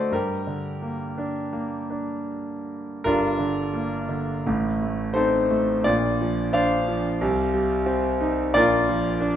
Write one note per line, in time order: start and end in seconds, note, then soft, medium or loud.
0.00 0.13 D3 medium
0.00 0.13 A3 soft
0.00 0.14 F#4 soft
0.00 0.14 A4 medium
0.00 0.14 C5 medium
0.00 0.14 D5 medium
0.00 0.14 D#5 medium
0.11 3.01 G2 medium
0.11 2.28 G4 medium
0.11 2.27 A#4 medium
0.47 1.87 D3 soft
0.82 1.51 A#3 soft
1.18 1.89 D4 soft
1.53 3.01 A#3 soft
1.90 3.02 D4 soft
3.04 4.41 G1 medium
3.04 4.41 G2 medium
3.04 4.42 D4 medium
3.04 4.41 F4 medium
3.04 4.41 A#4 medium
3.39 4.07 D3 soft
3.73 4.42 A#3 soft
4.09 4.43 D3 soft
4.46 5.81 A1 medium
4.46 5.81 A2 medium
4.82 5.49 A3 soft
5.14 5.83 C4 medium
5.14 5.81 D#4 soft
5.14 5.80 A4 medium
5.14 5.80 C5 medium
5.51 5.84 A3 medium
5.84 7.18 A#1 medium
5.84 7.18 A#2 medium
5.84 7.18 F4 medium
5.84 6.53 D5 medium
6.21 6.86 F3 medium
6.53 7.19 D4 medium
6.53 8.18 C5 medium
6.53 8.18 D5 medium
6.53 8.18 F5 medium
6.88 7.20 F3 medium
7.21 8.51 C2 medium
7.21 8.51 C3 medium
7.54 8.51 G3 medium
7.86 8.52 C4 medium
8.20 8.53 D#4 medium
8.54 9.36 A#1 medium
8.54 9.36 A#2 medium
8.54 9.36 F4 medium
8.54 9.36 A#4 medium
8.54 9.16 D5 loud
8.89 9.36 F3 medium
9.20 9.36 D4 medium